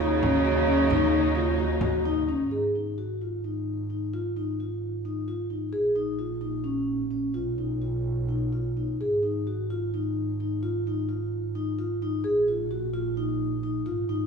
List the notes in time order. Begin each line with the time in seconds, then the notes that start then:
Already playing: D#2 C#3 F#3 D#4
0.00 D#4, frame drum
0.23 C#4, frame drum
0.45 F#4
0.68 C#4, frame drum
0.90 D#4, frame drum
1.36 F4
1.59 F#4
1.81 F#4, frame drum
2.04 D#4, frame drum
2.29 C#4
2.51 G#1 G#4
2.75 D#4
2.98 F#4
3.21 F4
3.44 D#4
3.90 D#4
4.14 F4
4.36 D#4
4.60 F4
5.05 D#4
5.28 F4
5.50 D#4
5.73 A#1 G#4
5.96 D#4
6.19 F4
6.41 D#4
6.64 C#4
7.11 C#4
7.34 B1 F4
7.58 D#4
7.82 F4
8.28 D#4
8.53 F4
8.77 D#4
9.00 G#1 G#4
9.23 D#4
9.47 F#4
9.70 F4
9.94 D#4
10.40 D#4
10.63 F4
10.87 D#4
11.09 F4
11.55 D#4
11.79 F4
12.02 D#4
12.24 A#1 G#4
12.48 F4
12.71 F#4
12.94 F4
13.17 D#4
13.63 D#4
13.86 G#1 F4
14.09 D#4